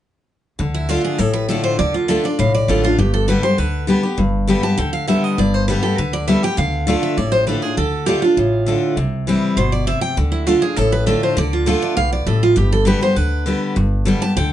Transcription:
0.59 D2 D3
0.74 E4
0.89 D3 A3 D4 F4
1.04 G#4
1.18 A1 A2 A4
1.33 B4
1.49 D3 A3 D4 F4 A4
1.64 C5
1.79 D2 D3 D5
1.94 F4
2.08 D3 A3 D4 F4 A4
2.24 D4 F4 D5
2.39 B1 A2 F5
2.54 D5
2.68 A1 D3 A3 D4 F4 A4
2.83 D4 F4
2.98 G1 G2 G4
3.14 A4
3.28 D3 G3 B3 G4 B4
3.43 B3 G4 C5
3.58 D2 D3 B4
3.87 D3 G3 B3 G4
4.03 B3 G4
4.18 G1 G2
4.47 D3 G3 B3 G4
4.63 B3 G4 A5
4.78 D2 D3 G5
4.93 F5
5.07 D3 G3 B3 G4 E5
5.24 D#5
5.38 G1 G2 D5
5.54 C5
5.68 D3 G3 B3 G4 B4
5.83 B3 G4 A4
5.98 D2 D3 B4
6.13 D5
6.27 D3 G3 B3 G4 E5
6.43 B3 G4 G5
6.57 D2 D3 F5
6.87 D3 A3 D4 F4
7.03 E5
7.17 A1 A2 D5
7.32 C5
7.47 D3 A3 D4 F4 B4
7.62 D4 F4 G#4
7.77 D2 D3 A4
8.06 D3 A3 D4 F4 G4
8.22 D4 F4
8.37 A1 A2
8.66 D3 A3 D4 F4
8.97 C2 C3
9.27 E3 G3 C4 E4
9.57 G1 B2 C5
9.72 D5
9.87 C3 E5
10.01 G5
10.17 D2 D3
10.32 E4
10.47 D3 A3 D4 F4
10.62 D4 F4 G#4
10.76 A1 A2 A4
10.92 B4
11.06 D3 A3 D4 F4 A4
11.23 C5
11.37 D2 D3 D5
11.53 F4
11.66 D3 A3 D4 F4 A4
11.82 D5
11.97 B1 B2 F5
12.13 D5
12.26 A1 A2 A4
12.43 F4
12.56 G1 G2 G4
12.72 A4
12.85 D3 G3 B3 G4 B4
13.01 B3 G4 C5
13.16 D2 D3 B4
13.46 D3 G3 B3 G4
13.76 G1 G2
14.05 D3 G3 B3 G4
14.22 B3 G4 A5
14.36 D2 D3 G5

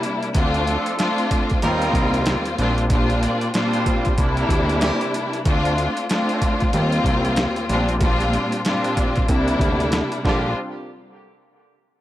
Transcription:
Already playing: C3 G3 A#3 D4 E4
0.03 closed hi-hat
0.23 closed hi-hat
0.34 D2 A3 C4 D4 F4, kick, closed hi-hat
0.54 A3 F4 C5, closed hi-hat
0.66 F3 D4 A4, closed hi-hat
0.86 closed hi-hat
0.98 A3 C4 D4 F4, snare, closed hi-hat
1.18 closed hi-hat
1.31 kick, closed hi-hat
1.50 kick, closed hi-hat
1.62 D#2 G3 A#3 C4 D#4 F4 A#4, closed hi-hat
1.82 closed hi-hat
1.94 C2, kick, closed hi-hat
2.14 closed hi-hat
2.26 snare, closed hi-hat
2.46 closed hi-hat
2.58 A#1 A#2 G3 C4 D4 F4, closed hi-hat
2.78 closed hi-hat
2.90 A#2 G3 C4 D4 F4, kick, closed hi-hat
3.10 closed hi-hat
3.22 A#3 G4 D5, closed hi-hat
3.41 closed hi-hat
3.54 A#2 G3 C4 D4 F4 C5, snare, closed hi-hat
3.73 closed hi-hat
3.86 kick, closed hi-hat
4.05 kick, closed hi-hat
4.18 C2 C3 G3 A#3 D4 E4, kick, closed hi-hat
4.37 G3 E4 A#4, closed hi-hat
4.49 D2, kick, closed hi-hat
4.69 E3 C4 G4, closed hi-hat
4.81 E3 C4 G4, snare, closed hi-hat
5.01 closed hi-hat
5.14 closed hi-hat
5.33 closed hi-hat
5.45 D2 A3 C4 D4 F4, kick, closed hi-hat
5.65 closed hi-hat
5.78 closed hi-hat
5.97 closed hi-hat
6.09 A3 C4 D4 F4, snare, closed hi-hat
6.29 closed hi-hat
6.42 kick, closed hi-hat
6.60 kick, closed hi-hat
6.72 D#2 G3 A#3 C4 F4, closed hi-hat
6.92 closed hi-hat
7.04 C2, kick, closed hi-hat
7.25 closed hi-hat
7.36 snare, closed hi-hat
7.56 closed hi-hat
7.69 A#1 A#2 G3 C4 D4 F4, closed hi-hat
7.89 closed hi-hat
8.01 A#2 G3 C4 D4 F4, kick, closed hi-hat
8.20 closed hi-hat
8.33 closed hi-hat
8.52 closed hi-hat
8.65 A#2 G3 C4 D4 F4, snare, closed hi-hat
8.84 closed hi-hat
8.97 kick, closed hi-hat
9.16 kick, closed hi-hat
9.28 C2 C3 G3 A#3 D4 E4, kick, closed hi-hat
9.48 closed hi-hat
9.60 D2, kick, closed hi-hat
9.80 closed hi-hat
9.92 snare, closed hi-hat
10.12 closed hi-hat
10.24 A#1 D3 G3 A#3 C4 D4 F4 G4, kick, snare

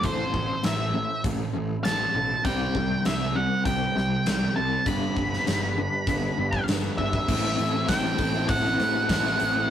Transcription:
0.03 A1 A2 E3 A3 E4 A4 C5, kick, closed hi-hat
0.33 A1 A2 E3, kick
0.63 A1 A2 E3 E5, snare, closed hi-hat
0.94 A2 E3
1.24 A1 A2 E3, kick, closed hi-hat
1.53 A1 A2 E3
1.83 A1 A2 E3 A5, snare, closed hi-hat
2.14 B1 A2 E3
2.44 C2 C3 G3 C4 E4 G4 C5 G5, kick, closed hi-hat
2.75 C2 C3 G3, kick
3.05 C2 C3 G3 E5, snare, closed hi-hat, tambourine
3.35 C3 G3 F#5
3.65 C2 C3 G3 G5, kick, closed hi-hat
3.96 C2 C3 G3, snare
4.26 C2 C3 G3, snare, closed hi-hat, tambourine
4.56 C2 C3 G3 A5
4.86 G1 G2 D3 G3 D4 G4 B4 B5, kick, closed hi-hat
5.16 G1 G2 D3, kick
5.33 snare
5.46 G1 G2 D3, snare, closed hi-hat, tambourine
5.78 G2 D3
6.07 G1 G2 D3, kick, closed hi-hat
6.38 G1 G2 D3
6.53 kick
6.68 G1 G2 D3, snare, closed hi-hat, tambourine
6.98 G1 G2 D3 E5, kick
7.13 kick
7.28 A1 A2 E3 A3 C4 E4 A4, kick, crash
7.45 snare
7.58 A1 E3 A3 C4 E4, open hi-hat
7.73 A3 C4 E4
7.88 A1 A2 E3 A3 C4 E4 G5, kick, snare, open hi-hat, tambourine
8.18 A1 E3 A3 C4 E4, muted overdriven electric guitar stroke, kick, open hi-hat
8.23 A2
8.34 A3 C4 E4
8.49 A1 F#5, kick, open hi-hat
8.65 A3 C4 E4
8.80 A2 E3 A3 C4 E4, snare, open hi-hat
9.09 A1 A2 E3 A3 C4 E4, kick, snare, open hi-hat, tambourine
9.23 A3 C4 E4
9.39 A1 E3 A3 C4 E4, open hi-hat
9.54 A3 C4 E4

